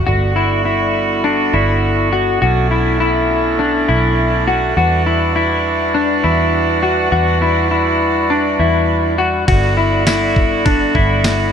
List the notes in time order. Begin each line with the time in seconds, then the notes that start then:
0.07 G1 D3 G3 B3 F#4
0.36 E4
0.65 E4
1.24 D4
1.54 G1 E4
2.13 F#4
2.42 B1 A3 C#4 D4 F#4
2.71 E4
3.00 E4
3.59 D4
3.88 B1 E4
4.47 F#4
4.77 E2 E3 G3 F#4
5.06 E4
5.36 E4
5.94 D4
6.24 E2 E4
6.83 F#4
7.12 E2 F#4
7.42 E4
7.71 E4
8.30 D4
8.59 E2 E4
9.18 F#4
9.48 G1 D3 B3 F#4, kick, ride
9.77 E4
10.07 E4, snare, ride, tambourine
10.36 kick
10.66 D4, kick, ride
10.95 G1 E4, kick
11.24 snare, ride, tambourine